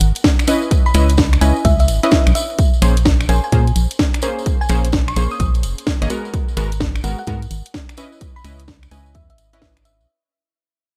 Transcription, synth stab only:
0.48 0.93 C#4 medium
0.48 0.93 E4 medium
0.48 0.93 B4 medium
0.48 0.93 D#5 medium
0.95 1.13 C#4 medium
0.95 1.13 E4 medium
0.95 1.13 B4 medium
0.95 1.13 D#5 loud
1.41 2.00 C#4 medium
1.41 2.00 E4 medium
1.41 2.00 B4 medium
1.41 2.00 D#5 medium
2.03 2.58 C#4 medium
2.03 2.58 E4 medium
2.03 2.58 B4 medium
2.03 2.58 D#5 loud
2.82 2.96 A#3 medium
2.82 2.96 C#4 medium
2.82 2.96 G#4 medium
2.82 2.96 C5 loud
3.29 3.48 A#3 medium
3.29 3.48 C#4 medium
3.29 3.48 G#4 medium
3.29 3.48 C5 medium
3.52 3.66 A#3 loud
3.52 3.66 C#4 medium
3.52 3.66 G#4 medium
3.52 3.66 C5 loud
4.23 4.68 A#3 medium
4.23 4.68 C#4 medium
4.23 4.68 G#4 medium
4.23 4.68 C5 medium
4.70 4.88 A#3 medium
4.70 4.88 C#4 medium
4.70 4.88 G#4 medium
4.70 4.88 C5 loud
5.16 5.98 A#3 medium
5.16 5.98 C#4 medium
5.16 5.98 G#4 medium
5.16 5.98 C5 medium
6.02 6.09 A#3 medium
6.02 6.09 C#4 medium
6.02 6.09 G#4 medium
6.02 6.09 D#5 loud
6.10 6.55 G#3 medium
6.10 6.55 B3 medium
6.10 6.55 F#4 medium
6.10 6.55 A#4 medium
6.57 6.71 G#3 medium
6.57 6.71 B3 medium
6.57 6.71 F#4 medium
6.57 6.71 A#4 loud
7.04 7.23 G#3 medium
7.04 7.23 B3 medium
7.04 7.23 F#4 medium
7.04 7.23 A#4 medium
7.27 7.41 G#3 loud
7.27 7.41 B3 medium
7.27 7.41 F#4 medium
7.27 7.41 A#4 loud
7.98 8.43 C#4 medium
7.98 8.43 E4 medium
7.98 8.42 B4 medium
7.98 8.43 D#5 loud
8.44 8.63 C#4 medium
8.44 8.63 E4 medium
8.44 8.63 B4 medium
8.44 8.63 D#5 loud
8.91 9.50 C#4 medium
8.91 9.50 E4 medium
8.91 9.50 B4 medium
8.91 9.50 D#5 medium
9.53 10.08 C#4 medium
9.53 10.08 E4 medium
9.53 10.08 B4 medium
9.53 10.08 D#5 loud

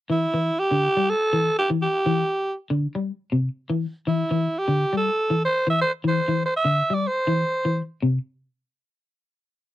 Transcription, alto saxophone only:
0.11 0.61 E4 medium
0.60 1.11 G4 medium
1.10 1.58 A4 loud
1.59 1.70 G4 medium
1.82 2.53 G4 medium
4.08 4.60 E4 medium
4.59 4.95 G4 medium
4.97 5.41 A4 medium
5.45 5.67 C5 loud
5.70 5.80 E5 medium
5.82 5.92 C5 medium
6.08 6.41 C5 medium
6.46 6.55 C5 medium
6.57 6.96 E5 medium
6.94 7.09 D5 medium
7.07 7.80 C5 medium

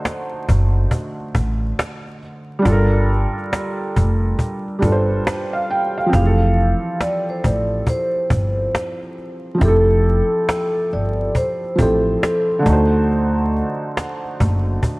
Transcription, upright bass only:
0.49 0.85 F#1 medium
1.35 1.71 A1 medium
2.66 3.24 G1 loud
3.97 4.32 F1 medium
4.83 5.19 G1 medium
6.14 6.72 F1 loud
7.45 7.80 A1 medium
8.31 8.67 G1 medium
9.62 10.20 F1 loud
10.93 11.28 G1 medium
11.79 12.15 A1 medium
12.66 13.60 D2 loud
14.41 14.76 F#1 medium

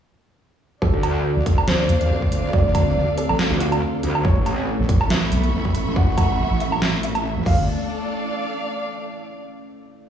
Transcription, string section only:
0.82 4.25 D4 medium
1.01 7.46 A4 medium
1.22 4.25 D5 medium
1.22 4.25 F5 medium
4.60 7.46 E5 medium
4.91 7.46 B5 medium
4.91 7.46 C#6 medium
7.46 9.14 D4 medium
7.53 9.14 A4 medium
7.81 9.35 D5 medium
7.87 9.35 F5 medium

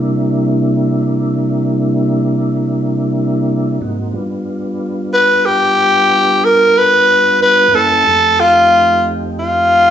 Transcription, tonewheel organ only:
0.00 3.79 C3 medium
0.00 3.79 G3 medium
0.00 3.79 A#3 medium
0.00 3.79 D4 medium
0.00 3.79 E4 medium
3.81 4.14 G#2 medium
3.81 4.15 A#3 medium
3.81 4.15 C4 medium
3.81 4.15 D#4 medium
3.81 4.15 F#4 medium
4.13 7.68 G2 medium
4.13 7.68 G3 medium
4.13 7.68 B3 medium
4.13 7.68 D4 medium
4.13 7.68 F4 medium
7.71 8.05 F#2 medium
7.71 8.05 A#3 medium
7.71 8.05 C#4 medium
7.71 8.05 E4 medium
7.71 8.05 G#5 medium
8.04 9.90 F2 medium
8.04 9.90 A3 medium
8.04 9.90 C4 medium
8.04 9.90 D#4 medium
8.04 9.90 G4 medium

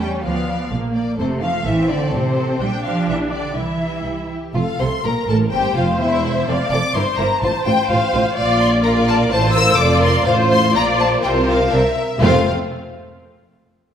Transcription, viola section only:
0.00 0.25 C#4 medium
0.26 0.72 B3 medium
0.73 1.19 A#3 medium
1.20 1.66 A3 medium
1.67 2.13 C4 medium
2.14 2.60 C4 medium
2.62 3.58 D4 medium
3.58 4.30 E4 soft
4.56 5.01 A4 medium
5.05 5.52 A#4 medium
5.53 6.46 C5 medium
6.48 6.96 D5 medium
6.97 7.42 C5 medium
7.43 8.36 C5 medium
8.37 8.83 D5 medium
8.84 9.30 A#4 medium
9.32 9.79 C5 medium
9.79 10.27 D5 medium
10.28 10.75 C5 medium
10.76 11.23 D5 medium
11.24 11.71 C5 medium
11.73 11.81 C5 medium
12.22 12.49 A3 medium
12.22 12.49 C4 medium

